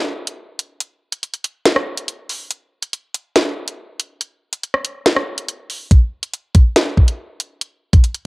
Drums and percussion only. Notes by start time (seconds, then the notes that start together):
0.27 closed hi-hat
0.59 closed hi-hat
0.80 closed hi-hat
1.12 closed hi-hat
1.23 closed hi-hat
1.34 closed hi-hat
1.44 closed hi-hat
1.65 snare, closed hi-hat
1.76 cross-stick
1.97 closed hi-hat
2.08 closed hi-hat
2.29 open hi-hat
2.51 closed hi-hat
2.82 closed hi-hat
2.93 closed hi-hat
3.14 closed hi-hat
3.36 snare, closed hi-hat
3.68 closed hi-hat
4.00 closed hi-hat
4.21 closed hi-hat
4.53 closed hi-hat
4.63 closed hi-hat
4.74 cross-stick
4.85 closed hi-hat
5.06 snare, closed hi-hat
5.16 cross-stick
5.38 closed hi-hat
5.48 closed hi-hat
5.70 open hi-hat
5.91 kick, closed hi-hat
6.23 closed hi-hat
6.34 closed hi-hat
6.55 kick, closed hi-hat
6.76 snare, closed hi-hat
6.97 kick
7.08 closed hi-hat
7.40 closed hi-hat
7.61 closed hi-hat
7.93 kick, closed hi-hat
8.04 closed hi-hat
8.14 closed hi-hat